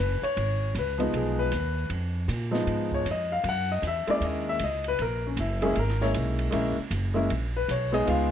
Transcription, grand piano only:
0.00 0.22 B4 medium
0.23 0.72 C#5 loud
0.79 1.13 B4 medium
0.98 1.48 F3 medium
0.98 1.49 G#3 medium
0.98 1.49 B3 medium
0.98 1.49 D#4 medium
1.17 1.39 G#4 medium
1.39 1.87 B4 medium
2.51 3.02 F3 medium
2.51 3.02 G#3 medium
2.51 3.02 B3 medium
2.51 3.03 D#4 medium
2.94 3.07 C#5 medium
3.11 3.32 D#5 medium
3.32 3.45 F5 medium
3.49 3.70 F#5 medium
3.72 3.84 D#5 medium
3.87 4.09 E5 medium
4.07 4.57 G#3 medium
4.07 4.57 A#3 medium
4.07 4.57 C#4 medium
4.07 4.58 E4 medium
4.07 4.22 D5 medium
4.25 4.47 D#5 medium
4.49 4.61 E5 loud
4.64 4.86 D#5 medium
4.88 5.00 B4 medium
5.02 5.24 A#4 medium
5.27 5.38 C#4 medium
5.40 5.62 E4 medium
5.62 5.74 G#3 medium
5.62 5.75 A#3 medium
5.62 5.75 C#4 medium
5.62 5.75 E4 medium
5.62 5.75 G#4 medium
5.79 6.01 A#4 medium
6.02 6.49 G#3 medium
6.02 6.50 A#3 medium
6.02 6.51 C#4 medium
6.02 6.51 E4 medium
6.02 6.10 C#5 medium
6.51 6.74 G#3 medium
6.51 6.74 A#3 medium
6.51 6.74 C#4 medium
6.51 6.75 E4 medium
7.14 7.27 G#3 medium
7.14 7.28 A#3 medium
7.14 7.28 C#4 medium
7.14 7.28 E4 medium
7.57 7.69 B4 medium
7.71 7.93 C#5 medium
7.92 8.04 G#3 medium
7.92 8.05 B3 medium
7.92 8.05 D#4 medium
7.92 8.31 G#4 medium
7.92 8.07 D#5 loud
8.05 8.28 G#3 medium
8.05 8.28 B3 medium
8.05 8.29 D#4 medium
8.05 8.29 F4 medium
8.09 8.31 F5 medium

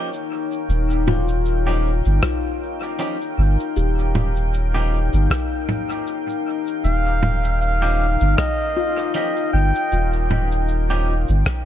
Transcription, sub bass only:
0.69 2.02 D#1 loud
2.06 2.21 G1 medium
3.38 3.57 G1 loud
3.76 5.09 D#1 loud
5.13 5.28 G1 medium
6.84 8.17 D#1 loud
8.21 8.36 G1 medium
9.53 9.72 G1 medium
9.92 11.25 D#1 loud
11.29 11.44 G1 medium

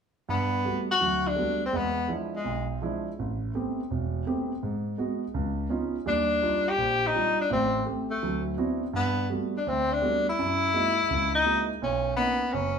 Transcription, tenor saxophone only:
0.30 0.85 B3 medium
0.91 1.29 F#4 medium
1.27 1.62 D4 medium
1.66 1.78 C4 medium
1.76 2.11 B3 medium
2.36 2.68 G#3 medium
6.08 6.71 D4 medium
6.69 7.08 G4 medium
7.07 7.40 D#4 medium
7.41 7.51 D4 medium
7.53 7.85 C4 medium
8.11 8.44 A3 medium
8.96 9.28 B3 medium
9.57 9.70 D4 medium
9.68 9.94 C4 medium
9.93 10.27 D4 medium
10.29 11.31 E4 loud
11.35 11.67 D#4 medium
11.83 12.15 C#4 medium
12.16 12.55 B3 medium
12.53 12.79 C#4 medium

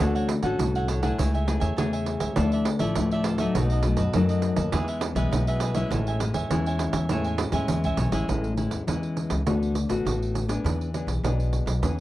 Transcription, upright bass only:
0.00 0.38 D2 loud
0.43 0.56 A1 medium
0.59 1.09 C2 medium
1.18 1.56 C#2 loud
1.61 1.74 E2 medium
1.77 2.15 E2 medium
2.20 2.34 C#2 loud
2.37 2.75 D2 loud
2.80 2.93 A1 medium
2.96 3.46 D2 loud
3.55 3.93 B1 loud
3.98 4.11 F#2 medium
4.14 4.52 F#2 medium
4.57 4.70 D#2 loud
4.73 5.11 E2 loud
5.15 5.29 B1 medium
5.31 5.82 B1 medium
5.91 6.29 A1 loud
6.34 6.47 E2 medium
6.50 6.88 E2 medium
6.93 7.44 E2 loud
7.52 7.66 E2 loud
7.68 7.82 E2 loud
7.84 7.97 C#2 medium
7.97 8.11 B1 medium
8.11 8.26 A1 medium
8.28 8.66 A1 loud
8.71 8.84 E2 medium
8.87 9.25 E2 medium
9.30 9.43 C#2 medium
9.47 9.84 D2 loud
9.89 10.02 A1 medium
10.05 10.56 A1 medium
10.64 11.02 E2 loud
11.07 11.20 B1 medium
11.23 11.61 B1 medium
11.66 11.80 B1 medium
11.82 12.00 E2 loud

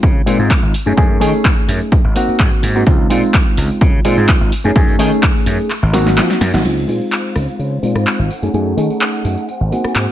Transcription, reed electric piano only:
0.00 0.24 G#3 medium
0.00 0.24 C4 medium
0.00 0.24 D#4 medium
0.00 0.24 F4 medium
0.26 0.73 G#3 medium
0.26 0.73 C4 medium
0.26 0.73 D#4 medium
0.26 0.73 F4 loud
0.86 0.94 A3 medium
0.86 0.94 C#4 medium
0.86 0.94 D#4 medium
0.86 0.95 G#4 medium
0.97 1.18 A3 medium
0.97 1.18 C#4 medium
0.97 1.19 D#4 medium
0.97 1.19 G#4 medium
1.20 1.90 A3 medium
1.20 1.90 C#4 medium
1.20 1.91 D#4 medium
1.20 1.91 G#4 medium
2.15 2.72 A#3 medium
2.15 2.72 C4 medium
2.15 2.73 D#4 medium
2.15 2.73 F#4 loud
2.75 2.83 A#3 medium
2.75 2.83 C4 medium
2.75 2.83 D#4 medium
2.75 2.84 F#4 medium
2.87 3.08 G#3 medium
2.87 3.08 C4 medium
2.87 3.08 D#4 medium
2.87 3.08 F4 medium
3.10 4.02 G#3 medium
3.10 4.02 C4 medium
3.10 4.02 D#4 medium
3.10 4.03 F4 medium
4.05 4.51 G#3 medium
4.05 4.51 C4 medium
4.05 4.51 D#4 medium
4.05 4.51 F4 loud
4.64 4.72 A3 medium
4.64 4.72 C#4 medium
4.64 4.73 D#4 medium
4.64 4.73 G#4 medium
4.75 4.96 A3 medium
4.75 4.97 C#4 medium
4.75 4.97 D#4 medium
4.75 4.97 G#4 medium
4.99 5.68 A3 medium
4.99 5.69 C#4 medium
4.99 5.69 D#4 medium
4.99 5.69 G#4 medium
5.93 6.50 A#3 medium
5.93 6.50 C4 medium
5.93 6.51 D#4 medium
5.93 6.51 F#4 loud
6.53 6.61 A#3 medium
6.53 6.62 C4 medium
6.53 6.62 D#4 medium
6.53 6.62 F#4 medium
6.64 6.85 G#3 medium
6.64 6.86 C4 medium
6.64 6.86 D#4 medium
6.64 6.86 F4 medium
6.88 7.80 G#3 medium
6.88 7.80 C4 medium
6.88 7.80 D#4 medium
6.88 7.81 F4 medium
7.83 8.29 G#3 medium
7.83 8.29 C4 medium
7.83 8.29 D#4 medium
7.83 8.29 F4 medium
8.43 8.50 A3 medium
8.43 8.51 C#4 medium
8.43 8.51 D#4 medium
8.43 8.51 G#4 medium
8.54 8.75 A3 medium
8.54 8.75 C#4 medium
8.54 8.75 D#4 medium
8.54 8.75 G#4 medium
8.77 9.46 A3 medium
8.77 9.47 C#4 medium
8.77 9.47 D#4 medium
8.77 9.47 G#4 medium
9.71 10.12 A#3 medium
9.71 10.12 C4 medium
9.71 10.12 D#4 medium
9.71 10.12 F#4 medium

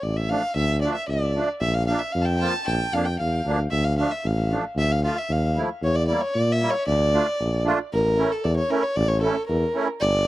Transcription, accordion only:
0.29 0.42 F3 medium
0.29 0.42 A3 soft
0.29 0.43 D4 medium
0.82 0.96 F3 soft
0.82 0.96 A3 medium
0.82 0.96 D4 medium
1.34 1.48 F3 medium
1.34 1.48 A3 soft
1.34 1.49 D4 medium
1.88 2.01 F3 medium
1.88 2.01 A#3 soft
1.88 2.01 D4 medium
2.39 2.53 F3 medium
2.39 2.54 A#3 medium
2.39 2.54 F4 medium
2.93 3.06 F3 medium
2.93 3.07 A#3 soft
2.93 3.07 D4 medium
3.46 3.59 F3 medium
3.46 3.59 A#3 medium
3.46 3.60 D4 medium
3.98 4.11 F3 medium
3.98 4.12 A3 soft
3.98 4.12 D4 medium
4.50 4.64 F3 medium
4.50 4.64 A3 medium
4.50 4.65 D4 medium
5.02 5.16 F3 medium
5.02 5.17 A3 medium
5.02 5.17 F4 medium
5.55 5.69 F3 medium
5.55 5.69 A3 medium
5.55 5.70 E4 medium
6.08 6.22 G3 medium
6.08 6.22 A#3 medium
6.08 6.22 E4 medium
6.61 6.74 G3 medium
6.61 6.74 A#3 medium
6.61 6.75 E4 medium
7.13 7.26 A3 medium
7.13 7.27 D4 medium
7.13 7.27 F4 medium
7.65 7.78 A3 medium
7.65 7.79 D4 medium
7.65 7.79 F4 medium
8.17 8.31 A3 medium
8.17 8.31 C#4 medium
8.17 8.31 E4 medium
8.70 8.83 A3 medium
8.70 8.83 C#4 medium
8.70 8.84 E4 medium
9.21 9.35 A3 medium
9.21 9.36 C#4 medium
9.21 9.36 E4 medium
9.74 9.87 A3 medium
9.74 9.88 C#4 medium
9.74 9.88 E4 medium

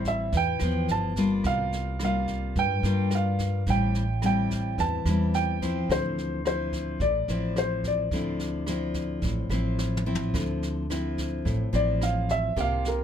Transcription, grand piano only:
0.08 0.32 E5 medium
0.37 0.87 G5 loud
0.91 1.29 A5 medium
1.47 2.03 F5 medium
2.05 2.54 F5 medium
2.59 3.14 G5 loud
3.15 3.70 F5 medium
3.70 4.25 G5 medium
4.26 4.81 G5 medium
4.80 5.36 A5 medium
5.35 5.91 G5 medium
5.92 6.45 C5 medium
6.47 6.98 C5 medium
7.02 7.58 D5 medium
7.58 7.86 C5 medium
7.87 9.76 D5 medium
11.75 12.01 D5 medium
12.03 12.29 F5 medium
12.31 12.56 E5 medium
12.61 12.85 F5 medium
12.88 13.04 A#4 medium

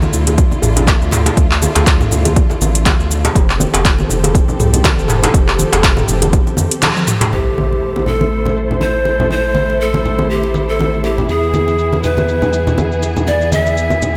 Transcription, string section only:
0.00 3.32 D3 medium
0.00 3.32 A3 medium
0.00 3.32 E4 medium
0.00 3.32 F4 medium
3.36 7.29 F3 medium
3.36 7.29 C4 medium
3.36 7.29 G4 medium
3.36 7.29 A4 medium
7.32 11.25 A3 medium
7.32 14.17 E4 medium
7.32 11.25 A4 medium
7.32 11.25 C5 medium
11.29 14.17 E3 medium
11.29 14.17 B3 medium
11.29 14.17 G#4 medium

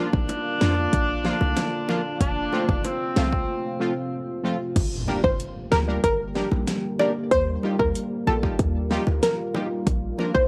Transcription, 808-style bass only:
0.13 0.26 A#1 medium
0.61 0.87 F2 loud
0.93 1.32 A#1 loud
1.41 1.54 C2 medium
2.21 2.47 F1 loud
2.69 2.82 F1 medium
3.17 3.43 C2 medium
4.76 5.02 G1 loud
5.24 5.37 G1 medium
5.72 5.98 D2 medium
6.04 6.43 G1 loud
6.52 6.65 A#1 medium
7.31 7.57 D#2 loud
7.80 7.92 D#2 medium
8.27 8.53 A#1 medium
8.59 8.98 D#2 loud
9.07 9.20 D2 medium
9.87 10.13 A#1 loud
10.35 10.48 A#1 medium

